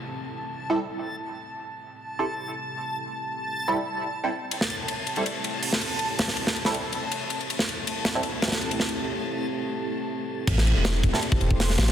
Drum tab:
CC |--------------------------------|--------------------------------|--------------------------------|--------------------------------|
RD |--------------------------------|--------------------------------|--------------------------------|x---x---x---x-x-x---x-------x---|
HH |--------------------------------|--------------------------------|--------------------------------|------------------------o-------|
SD |--------------------------------|--------------------------------|--------------------------------|--o-----------------------o-----|
BD |--------------------------------|--------------------------------|--------------------------------|--------------------------------|

CC |--------------------------------|--------------------------------|--------------------------------|x-------------------------------|
RD |x-------x---x---x---x---x---x-x-|x---x---x---x---x---xxx-x-x---x-|--------------------------------|x---x---x---x---x---x-------xxx-|
HH |----o---------------------------|--------------------------------|--------------------------------|------------------------o-------|
SD |----o-o---o---o-----------------|--o---------o-------ooo-----o---|--------------------------------|--o-----o-----o---------o-o-ooo-|
BD |--------------------------------|--------------------------------|--------------------------------|o-----------o-----o---o---------|